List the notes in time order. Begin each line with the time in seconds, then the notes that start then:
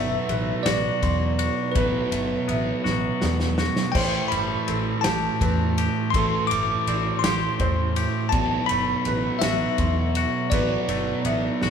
Already playing: G1 A2 B2 F#3 A3 B3 D5 E5
0.29 A1 B4, ride
0.63 A1 F#4 D5, snare, ride
1.03 E2 C6, kick, ride
1.39 F#4, ride
1.72 A1 A2 B2 B4, ride
1.76 F#3 B3 B4, kick
2.12 G1 A3, ride
2.48 A1 B3 E5, ride
2.84 A1 F#4, snare
3.22 E2 B3 D5, snare
3.40 snare
3.58 F#4, snare
3.76 snare
3.92 A1 A2 E3 C5 G5, kick, crash
3.97 A3
4.28 G1 G3 B5, ride
4.68 A1 C4 A4, ride
5.01 G4 A5, snare, ride
5.05 A1
5.41 E2 C4 B4, kick, ride
5.78 G4, ride
6.11 A1 A2 C6, kick, ride
6.15 A2 E3 A3 A4
6.47 D6, ride
6.51 G1 G3
6.87 A1 C4 D5, ride
7.19 C6
7.24 A1 G4, snare, ride
7.60 E2 C4 C5, kick, ride
7.96 G4, ride
8.29 A1 B2 A5, kick, ride
8.33 A2 F#3 B3 D5
8.66 B5, ride
8.71 G1 A3
9.05 A1 B4, ride
9.39 A1 E5, snare, ride
9.43 F#4
9.78 E2 C6, kick, ride
10.15 F#4, ride
10.50 A1 A2 B2 F#3 B4 D5, kick, ride
10.55 B3
10.88 G1 A3, ride
11.25 A1 B3 E5, ride
11.62 A1 F#4, snare